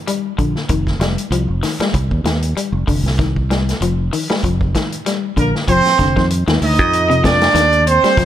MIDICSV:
0, 0, Header, 1, 7, 480
1, 0, Start_track
1, 0, Tempo, 623053
1, 537, Time_signature, 4, 2, 24, 8
1, 6356, End_track
2, 0, Start_track
2, 0, Title_t, "Horn section"
2, 0, Program_c, 0, 61
2, 4154, Note_on_c, 0, 58, 77
2, 4154, Note_on_c, 0, 70, 84
2, 4258, Note_off_c, 0, 58, 0
2, 4258, Note_off_c, 0, 70, 0
2, 4381, Note_on_c, 0, 60, 113
2, 4381, Note_on_c, 0, 72, 123
2, 4829, Note_off_c, 0, 60, 0
2, 4829, Note_off_c, 0, 72, 0
2, 5112, Note_on_c, 0, 63, 101
2, 5112, Note_on_c, 0, 75, 109
2, 5555, Note_off_c, 0, 63, 0
2, 5555, Note_off_c, 0, 75, 0
2, 5584, Note_on_c, 0, 62, 109
2, 5584, Note_on_c, 0, 74, 118
2, 6061, Note_off_c, 0, 62, 0
2, 6061, Note_off_c, 0, 74, 0
2, 6063, Note_on_c, 0, 60, 107
2, 6063, Note_on_c, 0, 72, 116
2, 6356, Note_off_c, 0, 60, 0
2, 6356, Note_off_c, 0, 72, 0
2, 6356, End_track
3, 0, Start_track
3, 0, Title_t, "Clean electric guitar"
3, 0, Program_c, 1, 27
3, 57, Note_on_c, 1, 55, 75
3, 248, Note_off_c, 1, 55, 0
3, 296, Note_on_c, 1, 50, 77
3, 487, Note_off_c, 1, 50, 0
3, 537, Note_on_c, 1, 51, 93
3, 727, Note_off_c, 1, 51, 0
3, 779, Note_on_c, 1, 55, 69
3, 968, Note_off_c, 1, 55, 0
3, 1016, Note_on_c, 1, 53, 71
3, 1207, Note_off_c, 1, 53, 0
3, 1255, Note_on_c, 1, 51, 67
3, 1362, Note_off_c, 1, 51, 0
3, 1389, Note_on_c, 1, 55, 67
3, 1474, Note_off_c, 1, 55, 0
3, 1739, Note_on_c, 1, 51, 65
3, 1929, Note_off_c, 1, 51, 0
3, 1978, Note_on_c, 1, 55, 69
3, 2168, Note_off_c, 1, 55, 0
3, 2214, Note_on_c, 1, 50, 67
3, 2406, Note_off_c, 1, 50, 0
3, 2457, Note_on_c, 1, 51, 93
3, 2648, Note_off_c, 1, 51, 0
3, 2700, Note_on_c, 1, 55, 64
3, 2890, Note_off_c, 1, 55, 0
3, 2944, Note_on_c, 1, 53, 73
3, 3132, Note_off_c, 1, 53, 0
3, 3181, Note_on_c, 1, 51, 75
3, 3286, Note_off_c, 1, 51, 0
3, 3311, Note_on_c, 1, 55, 65
3, 3396, Note_off_c, 1, 55, 0
3, 3423, Note_on_c, 1, 53, 68
3, 3612, Note_off_c, 1, 53, 0
3, 3665, Note_on_c, 1, 51, 69
3, 3853, Note_off_c, 1, 51, 0
3, 3900, Note_on_c, 1, 55, 72
3, 4091, Note_off_c, 1, 55, 0
3, 4140, Note_on_c, 1, 50, 72
3, 4330, Note_off_c, 1, 50, 0
3, 4381, Note_on_c, 1, 53, 109
3, 4571, Note_off_c, 1, 53, 0
3, 4615, Note_on_c, 1, 50, 78
3, 4722, Note_off_c, 1, 50, 0
3, 4748, Note_on_c, 1, 51, 82
3, 4941, Note_off_c, 1, 51, 0
3, 4989, Note_on_c, 1, 51, 68
3, 5181, Note_off_c, 1, 51, 0
3, 5468, Note_on_c, 1, 48, 79
3, 5554, Note_off_c, 1, 48, 0
3, 5576, Note_on_c, 1, 48, 73
3, 5767, Note_off_c, 1, 48, 0
3, 5816, Note_on_c, 1, 51, 84
3, 6007, Note_off_c, 1, 51, 0
3, 6194, Note_on_c, 1, 55, 72
3, 6278, Note_off_c, 1, 55, 0
3, 6303, Note_on_c, 1, 53, 112
3, 6356, Note_off_c, 1, 53, 0
3, 6356, End_track
4, 0, Start_track
4, 0, Title_t, "Fingered electric bass"
4, 0, Program_c, 2, 33
4, 297, Note_on_c, 2, 34, 72
4, 415, Note_off_c, 2, 34, 0
4, 536, Note_on_c, 2, 29, 83
4, 750, Note_off_c, 2, 29, 0
4, 765, Note_on_c, 2, 29, 85
4, 889, Note_off_c, 2, 29, 0
4, 1006, Note_on_c, 2, 36, 93
4, 1129, Note_off_c, 2, 36, 0
4, 1141, Note_on_c, 2, 29, 84
4, 1240, Note_off_c, 2, 29, 0
4, 1492, Note_on_c, 2, 36, 91
4, 1613, Note_off_c, 2, 36, 0
4, 1625, Note_on_c, 2, 39, 88
4, 1722, Note_off_c, 2, 39, 0
4, 1726, Note_on_c, 2, 39, 80
4, 1945, Note_off_c, 2, 39, 0
4, 2099, Note_on_c, 2, 29, 86
4, 2199, Note_off_c, 2, 29, 0
4, 2215, Note_on_c, 2, 29, 78
4, 2335, Note_off_c, 2, 29, 0
4, 2339, Note_on_c, 2, 36, 85
4, 2867, Note_off_c, 2, 36, 0
4, 2933, Note_on_c, 2, 29, 86
4, 3150, Note_off_c, 2, 29, 0
4, 3417, Note_on_c, 2, 29, 89
4, 3632, Note_off_c, 2, 29, 0
4, 4133, Note_on_c, 2, 34, 73
4, 4254, Note_off_c, 2, 34, 0
4, 4373, Note_on_c, 2, 29, 93
4, 4495, Note_off_c, 2, 29, 0
4, 4614, Note_on_c, 2, 29, 95
4, 4735, Note_off_c, 2, 29, 0
4, 4749, Note_on_c, 2, 41, 112
4, 4965, Note_off_c, 2, 41, 0
4, 4989, Note_on_c, 2, 39, 89
4, 5086, Note_off_c, 2, 39, 0
4, 5098, Note_on_c, 2, 38, 88
4, 5229, Note_off_c, 2, 38, 0
4, 5229, Note_on_c, 2, 41, 94
4, 5753, Note_off_c, 2, 41, 0
4, 5813, Note_on_c, 2, 39, 91
4, 6147, Note_off_c, 2, 39, 0
4, 6297, Note_on_c, 2, 29, 105
4, 6356, Note_off_c, 2, 29, 0
4, 6356, End_track
5, 0, Start_track
5, 0, Title_t, "Muted clean electric guitar strokes"
5, 1498, Note_on_c, 9, 29, 71
5, 1575, Note_off_c, 9, 29, 0
5, 6356, End_track
6, 0, Start_track
6, 0, Title_t, "Muted fingered electric bass strokes"
6, 1381, Note_on_c, 9, 29, 36
6, 1458, Note_off_c, 9, 29, 0
6, 1968, Note_on_c, 9, 29, 37
6, 2045, Note_off_c, 9, 29, 0
6, 6187, Note_on_c, 9, 29, 42
6, 6264, Note_off_c, 9, 29, 0
6, 6356, End_track
7, 0, Start_track
7, 0, Title_t, "Drums"
7, 58, Note_on_c, 9, 42, 72
7, 135, Note_off_c, 9, 42, 0
7, 297, Note_on_c, 9, 42, 50
7, 298, Note_on_c, 9, 36, 60
7, 374, Note_off_c, 9, 42, 0
7, 375, Note_off_c, 9, 36, 0
7, 429, Note_on_c, 9, 38, 25
7, 506, Note_off_c, 9, 38, 0
7, 531, Note_on_c, 9, 42, 77
7, 535, Note_on_c, 9, 36, 91
7, 608, Note_off_c, 9, 42, 0
7, 612, Note_off_c, 9, 36, 0
7, 668, Note_on_c, 9, 38, 26
7, 669, Note_on_c, 9, 36, 57
7, 745, Note_off_c, 9, 38, 0
7, 746, Note_off_c, 9, 36, 0
7, 776, Note_on_c, 9, 42, 48
7, 779, Note_on_c, 9, 38, 58
7, 853, Note_off_c, 9, 42, 0
7, 856, Note_off_c, 9, 38, 0
7, 909, Note_on_c, 9, 42, 49
7, 986, Note_off_c, 9, 42, 0
7, 1017, Note_on_c, 9, 42, 65
7, 1094, Note_off_c, 9, 42, 0
7, 1257, Note_on_c, 9, 46, 59
7, 1260, Note_on_c, 9, 38, 28
7, 1334, Note_off_c, 9, 46, 0
7, 1337, Note_off_c, 9, 38, 0
7, 1389, Note_on_c, 9, 42, 49
7, 1392, Note_on_c, 9, 38, 71
7, 1466, Note_off_c, 9, 42, 0
7, 1469, Note_off_c, 9, 38, 0
7, 1493, Note_on_c, 9, 42, 56
7, 1495, Note_on_c, 9, 36, 68
7, 1570, Note_off_c, 9, 42, 0
7, 1572, Note_off_c, 9, 36, 0
7, 1628, Note_on_c, 9, 36, 60
7, 1705, Note_off_c, 9, 36, 0
7, 1736, Note_on_c, 9, 42, 44
7, 1739, Note_on_c, 9, 38, 65
7, 1813, Note_off_c, 9, 42, 0
7, 1816, Note_off_c, 9, 38, 0
7, 1868, Note_on_c, 9, 42, 48
7, 1945, Note_off_c, 9, 42, 0
7, 1981, Note_on_c, 9, 42, 62
7, 2058, Note_off_c, 9, 42, 0
7, 2218, Note_on_c, 9, 36, 65
7, 2222, Note_on_c, 9, 46, 62
7, 2295, Note_off_c, 9, 36, 0
7, 2299, Note_off_c, 9, 46, 0
7, 2359, Note_on_c, 9, 38, 26
7, 2436, Note_off_c, 9, 38, 0
7, 2457, Note_on_c, 9, 36, 86
7, 2459, Note_on_c, 9, 42, 66
7, 2462, Note_on_c, 9, 38, 29
7, 2534, Note_off_c, 9, 36, 0
7, 2536, Note_off_c, 9, 42, 0
7, 2539, Note_off_c, 9, 38, 0
7, 2592, Note_on_c, 9, 36, 59
7, 2669, Note_off_c, 9, 36, 0
7, 2702, Note_on_c, 9, 42, 41
7, 2705, Note_on_c, 9, 38, 57
7, 2779, Note_off_c, 9, 42, 0
7, 2782, Note_off_c, 9, 38, 0
7, 2841, Note_on_c, 9, 42, 49
7, 2844, Note_on_c, 9, 38, 25
7, 2918, Note_off_c, 9, 42, 0
7, 2921, Note_off_c, 9, 38, 0
7, 2941, Note_on_c, 9, 42, 61
7, 3018, Note_off_c, 9, 42, 0
7, 3181, Note_on_c, 9, 46, 60
7, 3258, Note_off_c, 9, 46, 0
7, 3315, Note_on_c, 9, 38, 71
7, 3392, Note_off_c, 9, 38, 0
7, 3417, Note_on_c, 9, 36, 59
7, 3418, Note_on_c, 9, 42, 67
7, 3494, Note_off_c, 9, 36, 0
7, 3495, Note_off_c, 9, 42, 0
7, 3550, Note_on_c, 9, 36, 64
7, 3627, Note_off_c, 9, 36, 0
7, 3657, Note_on_c, 9, 36, 60
7, 3659, Note_on_c, 9, 42, 50
7, 3662, Note_on_c, 9, 38, 66
7, 3734, Note_off_c, 9, 36, 0
7, 3736, Note_off_c, 9, 42, 0
7, 3739, Note_off_c, 9, 38, 0
7, 3793, Note_on_c, 9, 42, 55
7, 3870, Note_off_c, 9, 42, 0
7, 3899, Note_on_c, 9, 42, 67
7, 3902, Note_on_c, 9, 38, 26
7, 3976, Note_off_c, 9, 42, 0
7, 3979, Note_off_c, 9, 38, 0
7, 4137, Note_on_c, 9, 36, 59
7, 4140, Note_on_c, 9, 42, 52
7, 4214, Note_off_c, 9, 36, 0
7, 4217, Note_off_c, 9, 42, 0
7, 4278, Note_on_c, 9, 38, 26
7, 4355, Note_off_c, 9, 38, 0
7, 4376, Note_on_c, 9, 42, 81
7, 4377, Note_on_c, 9, 36, 102
7, 4453, Note_off_c, 9, 42, 0
7, 4454, Note_off_c, 9, 36, 0
7, 4511, Note_on_c, 9, 42, 36
7, 4514, Note_on_c, 9, 38, 31
7, 4588, Note_off_c, 9, 42, 0
7, 4591, Note_off_c, 9, 38, 0
7, 4616, Note_on_c, 9, 36, 63
7, 4616, Note_on_c, 9, 42, 58
7, 4619, Note_on_c, 9, 38, 26
7, 4693, Note_off_c, 9, 42, 0
7, 4694, Note_off_c, 9, 36, 0
7, 4696, Note_off_c, 9, 38, 0
7, 4751, Note_on_c, 9, 36, 75
7, 4754, Note_on_c, 9, 38, 28
7, 4828, Note_off_c, 9, 36, 0
7, 4831, Note_off_c, 9, 38, 0
7, 4857, Note_on_c, 9, 42, 73
7, 4934, Note_off_c, 9, 42, 0
7, 4990, Note_on_c, 9, 42, 31
7, 4993, Note_on_c, 9, 38, 74
7, 5067, Note_off_c, 9, 42, 0
7, 5070, Note_off_c, 9, 38, 0
7, 5098, Note_on_c, 9, 46, 76
7, 5175, Note_off_c, 9, 46, 0
7, 5232, Note_on_c, 9, 36, 80
7, 5232, Note_on_c, 9, 42, 33
7, 5309, Note_off_c, 9, 36, 0
7, 5310, Note_off_c, 9, 42, 0
7, 5341, Note_on_c, 9, 42, 65
7, 5418, Note_off_c, 9, 42, 0
7, 5478, Note_on_c, 9, 42, 33
7, 5555, Note_off_c, 9, 42, 0
7, 5579, Note_on_c, 9, 36, 68
7, 5582, Note_on_c, 9, 42, 51
7, 5586, Note_on_c, 9, 38, 77
7, 5656, Note_off_c, 9, 36, 0
7, 5660, Note_off_c, 9, 42, 0
7, 5663, Note_off_c, 9, 38, 0
7, 5712, Note_on_c, 9, 42, 35
7, 5715, Note_on_c, 9, 38, 76
7, 5789, Note_off_c, 9, 42, 0
7, 5792, Note_off_c, 9, 38, 0
7, 5820, Note_on_c, 9, 42, 78
7, 5823, Note_on_c, 9, 38, 29
7, 5897, Note_off_c, 9, 42, 0
7, 5900, Note_off_c, 9, 38, 0
7, 5952, Note_on_c, 9, 42, 34
7, 6029, Note_off_c, 9, 42, 0
7, 6062, Note_on_c, 9, 42, 51
7, 6139, Note_off_c, 9, 42, 0
7, 6193, Note_on_c, 9, 42, 31
7, 6196, Note_on_c, 9, 38, 29
7, 6270, Note_off_c, 9, 42, 0
7, 6273, Note_off_c, 9, 38, 0
7, 6298, Note_on_c, 9, 36, 110
7, 6304, Note_on_c, 9, 42, 78
7, 6307, Note_on_c, 9, 38, 34
7, 6356, Note_off_c, 9, 36, 0
7, 6356, Note_off_c, 9, 38, 0
7, 6356, Note_off_c, 9, 42, 0
7, 6356, End_track
0, 0, End_of_file